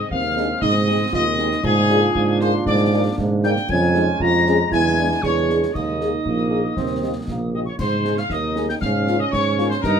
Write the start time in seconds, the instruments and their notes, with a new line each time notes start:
Already playing: trombone section G#3 C4
0.10 tuba D#2, euphonium C4, trumpet section F5, piccolo F6, concert bass drum
0.36 french horn section C4 D#4 G#4, euphonium D4, snare
0.61 tuba G#2, euphonium D#4, trumpet section D#5, piccolo D#6, concert bass drum, snare
0.87 french horn section C4 D#4 G#4, euphonium G#4
1.13 tuba D#2, euphonium F4, trumpet section D#5, piccolo D#6, concert bass drum, snare
1.39 french horn section C4 D#4 G#4, euphonium D#4, snare
1.51 snare
1.63 tuba G#2, trombone section A#3 D4, euphonium F4, trumpet section G#4, piccolo G#5, concert bass drum, crash
1.90 french horn section A#3 D4 G#4, euphonium F4, snare
2.15 tuba G#2, concert bass drum
2.40 french horn section A#3 D4 G#4, trumpet section C5, piccolo C6, snare
2.66 tuba G#2, trumpet section D5, piccolo D6, concert bass drum, snare
2.93 french horn section A#3 D4 G#4
3.17 tuba G#2, euphonium D#4, concert bass drum, snare
3.43 french horn section A#3 D4 G#4, euphonium D4, trumpet section G5, piccolo G6, snare
3.56 snare
3.69 tuba F2, trombone section G#3 C#4, euphonium C#4, trumpet section G#5, piccolo G#6, concert bass drum, crash
3.95 french horn section G#3 C#4 G#4, euphonium D#4, snare
4.20 tuba F2, euphonium F4, trumpet section A#5, piccolo A#6, concert bass drum
4.46 french horn section G#3 C#4 G#4, euphonium C#4, snare
4.71 tuba E2, trombone section D4, euphonium E4, trumpet section G#5, piccolo G#6, concert bass drum, snare
4.98 french horn section G#3 D4 G#4
5.22 tuba E2, euphonium G#4, trumpet section C#5, piccolo C#6, concert bass drum, snare
5.50 french horn section G#3 D4 G#4, snare
5.63 snare
5.73 tuba D#2, trombone section G#3 A#3, euphonium D#4, trumpet section D#5, piccolo D#6, concert bass drum, crash
6.00 french horn section A#3 D#4 G#4, snare
6.25 tuba A#1, trombone section A#3, concert bass drum
6.50 french horn section A#3 D#4 G#4
6.76 tuba D#2, trombone section C4, concert bass drum, snare
7.02 french horn section A#3 D#4 G4
7.28 tuba A#1, trombone section A#3, concert bass drum, snare
7.54 french horn section A#3 D#4 G4, trumpet section D#5, piccolo D#6
7.66 trumpet section C#5, piccolo C#6
7.79 tuba G#2, trumpet section C5, piccolo C6, concert bass drum, snare, crash
8.04 french horn section G#3 D#4 G#4, snare
8.17 trumpet section F5, piccolo F6, snare
8.30 tuba D#2, trombone section D#4, trumpet section D#5, piccolo D#6, concert bass drum, snare
8.56 french horn section G#3 D#4 G#4, snare
8.69 trumpet section G5, piccolo G6, snare
8.81 tuba G#2, trombone section C#4, trumpet section F5, piccolo F6, concert bass drum, snare
9.07 french horn section A#3 C#4 F4, snare
9.19 trumpet section D#5, piccolo D#6
9.31 tuba G#2, trumpet section C#5, piccolo C#6, concert bass drum, snare
9.58 french horn section A#3 C#4 F4, snare
9.69 trumpet section C5, piccolo C6, snare
9.82 tuba G2, trombone section D#4, trumpet section A#4, piccolo A#5, concert bass drum, snare, crash